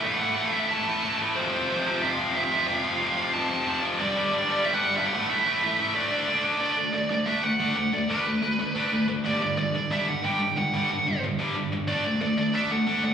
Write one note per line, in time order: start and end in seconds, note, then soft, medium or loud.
0.03 0.18 A2 medium
0.03 0.20 E3 loud
0.03 0.21 A3 loud
0.03 0.52 F#5 loud
0.20 0.37 A2 medium
0.20 0.36 E3 medium
0.20 0.36 A3 loud
0.37 0.52 A2 medium
0.37 0.53 E3 medium
0.37 0.55 A3 loud
0.52 0.70 A2 medium
0.52 0.70 E3 loud
0.52 0.70 A3 loud
0.52 0.67 E5 loud
0.71 0.86 A2 medium
0.71 0.87 E3 loud
0.71 0.88 A3 loud
0.71 1.17 A5 loud
0.87 1.05 A2 medium
0.87 1.04 E3 loud
0.87 1.04 A3 loud
1.04 1.19 A2 medium
1.04 1.20 E3 medium
1.04 1.21 A3 medium
1.20 1.36 A2 medium
1.20 1.36 E3 medium
1.20 4.03 A3 medium
1.36 1.55 F2 medium
1.36 1.53 C3 loud
1.36 1.53 F3 loud
1.36 2.04 C5 medium
1.54 1.70 F2 medium
1.54 1.70 C3 medium
1.54 1.71 F3 loud
1.70 1.87 F2 medium
1.70 1.86 C3 medium
1.70 1.86 F3 medium
1.86 2.02 F2 medium
1.86 2.02 C3 medium
1.86 2.03 F3 loud
2.02 2.19 F2 loud
2.02 2.18 C3 loud
2.02 2.18 F3 loud
2.02 2.10 E5 loud
2.10 2.36 F5 medium
2.19 2.34 F2 medium
2.19 2.35 C3 medium
2.19 2.35 F3 loud
2.35 2.51 F2 medium
2.35 2.51 C3 medium
2.35 2.50 F3 medium
2.35 2.43 E5 medium
2.44 2.67 E5 medium
2.51 2.66 F2 medium
2.51 2.67 C3 medium
2.51 2.67 F3 loud
2.67 2.84 F2 loud
2.67 2.84 C3 loud
2.67 2.82 F3 loud
2.67 2.78 E5 loud
2.78 3.35 F5 loud
2.84 3.00 F2 medium
2.84 3.00 C3 medium
2.84 3.01 F3 loud
3.01 3.17 F2 medium
3.01 3.16 C3 medium
3.01 3.16 F3 medium
3.17 3.32 F2 medium
3.17 3.33 C3 loud
3.17 3.34 F3 loud
3.34 3.50 F2 loud
3.34 3.49 C3 loud
3.34 3.48 F3 loud
3.34 3.79 A5 loud
3.50 3.65 F2 medium
3.50 3.66 C3 medium
3.50 3.67 F3 loud
3.66 3.83 F2 medium
3.66 3.82 C3 loud
3.66 3.81 F3 loud
3.83 3.99 F2 medium
3.83 3.98 C3 loud
3.83 3.98 F3 medium
4.00 4.16 G2 medium
4.00 4.15 D3 loud
4.00 4.14 G3 loud
4.00 4.67 D5 medium
4.15 4.32 G2 medium
4.15 4.32 D3 medium
4.15 4.33 G3 loud
4.33 4.49 G2 loud
4.33 4.49 D3 loud
4.33 4.48 G3 loud
4.49 4.63 G2 medium
4.49 4.65 D3 medium
4.49 4.65 G3 loud
4.65 4.82 G2 loud
4.65 4.81 D3 loud
4.65 4.80 G3 loud
4.65 4.73 E5 loud
4.73 4.96 F#5 medium
4.81 4.97 G2 medium
4.81 4.97 D3 medium
4.81 4.98 G3 loud
4.97 5.13 G2 medium
4.97 5.13 D3 medium
4.97 5.14 G3 medium
4.97 5.06 E5 medium
5.06 5.29 F#5 medium
5.14 5.30 A2 loud
5.14 5.30 E3 loud
5.14 5.29 A3 loud
5.30 5.44 A2 medium
5.30 5.45 E3 loud
5.30 5.46 A3 loud
5.30 5.92 E5 loud
5.45 5.62 A2 loud
5.45 5.62 E3 loud
5.45 5.62 A3 loud
5.63 5.78 A2 medium
5.63 5.79 E3 medium
5.63 5.79 A3 loud
5.79 5.95 A2 medium
5.79 5.95 E3 medium
5.79 5.95 A3 medium
5.95 6.11 D3 loud
5.95 6.11 A3 medium
5.95 6.10 D4 loud
5.95 6.41 D5 medium
6.11 6.27 D3 medium
6.11 6.28 A3 loud
6.11 6.28 D4 loud
6.28 6.44 D3 medium
6.28 6.44 A3 medium
6.28 6.43 D4 medium
6.44 6.59 D3 medium
6.44 6.60 A3 medium
6.44 6.60 D4 medium
6.60 6.76 D3 medium
6.60 6.77 A3 medium
6.60 6.77 D4 loud
6.60 6.92 D5 medium
6.78 6.93 D3 medium
6.78 6.93 A3 medium
6.93 7.09 D3 medium
6.93 7.09 A3 medium
6.93 7.09 D5 medium
7.10 7.26 D3 medium
7.10 7.26 A3 medium
7.10 7.27 D5 medium
7.26 7.42 D3 medium
7.26 7.42 A3 loud
7.26 7.43 D4 loud
7.26 7.43 E5 medium
7.43 7.58 D3 medium
7.43 7.58 A3 medium
7.43 7.75 F#5 loud
7.60 7.75 D3 medium
7.60 7.76 A3 medium
7.60 7.76 D4 medium
7.77 7.91 D3 medium
7.77 7.92 A3 medium
7.77 7.92 F#5 medium
7.93 8.08 D3 medium
7.93 8.08 A3 medium
7.93 8.10 D5 medium
8.09 8.25 D3 medium
8.09 8.25 A3 loud
8.09 8.26 D4 loud
8.09 9.05 B4 medium
8.26 8.41 D3 medium
8.26 8.41 A3 medium
8.42 8.57 D3 medium
8.42 8.57 A3 medium
8.59 8.74 D3 medium
8.59 8.74 A3 medium
8.75 8.90 D3 loud
8.75 8.91 A3 loud
8.75 8.91 D4 loud
8.91 9.06 D3 medium
8.91 9.07 A3 medium
9.08 9.23 D3 medium
9.08 9.23 A3 medium
9.24 9.40 G2 medium
9.24 9.40 D3 medium
9.24 9.41 G3 medium
9.24 9.41 D5 medium
9.41 9.56 G2 medium
9.41 9.56 D3 medium
9.41 9.57 D5 medium
9.58 9.72 G2 medium
9.58 9.73 D3 medium
9.58 9.92 D5 medium
9.74 9.89 G2 medium
9.74 9.89 D3 medium
9.91 10.06 G2 medium
9.91 10.07 D3 medium
9.91 10.07 G3 medium
9.91 10.08 E5 loud
10.07 10.22 G2 medium
10.07 10.22 D3 medium
10.07 10.25 F#5 medium
10.24 10.39 G2 medium
10.24 10.39 D3 medium
10.24 10.40 G3 loud
10.24 10.58 G5 medium
10.40 10.55 G2 medium
10.40 10.55 D3 medium
10.56 10.71 G2 medium
10.56 10.72 D3 medium
10.56 11.19 F#5 medium
10.73 10.89 G2 loud
10.73 10.89 D3 medium
10.73 10.89 G3 loud
10.90 11.05 G2 medium
10.90 11.05 D3 medium
11.06 11.21 G2 medium
11.06 11.21 D3 medium
11.24 11.38 G2 medium
11.24 11.38 D3 medium
11.39 11.54 G2 loud
11.39 11.55 D3 loud
11.39 11.55 G3 loud
11.56 11.70 G2 medium
11.56 11.70 D3 medium
11.72 11.87 G2 medium
11.72 11.87 D3 medium
11.88 12.03 D3 medium
11.88 12.04 A3 medium
11.88 12.04 D4 medium
11.88 12.21 D5 medium
12.05 12.20 D3 medium
12.05 12.20 A3 medium
12.21 12.36 D3 medium
12.21 12.36 A3 medium
12.21 12.37 D5 medium
12.38 12.52 D3 medium
12.38 12.53 A3 medium
12.38 12.55 D5 loud
12.53 12.69 D3 medium
12.53 12.70 A3 medium
12.53 12.70 D4 medium
12.53 12.71 E5 medium
12.71 12.85 D3 medium
12.71 12.86 A3 medium
12.71 13.04 F#5 loud
12.87 13.02 D3 loud
12.87 13.03 A3 medium
12.87 13.03 D4 loud
13.04 13.14 D3 medium
13.04 13.14 A3 medium
13.04 13.14 F#5 loud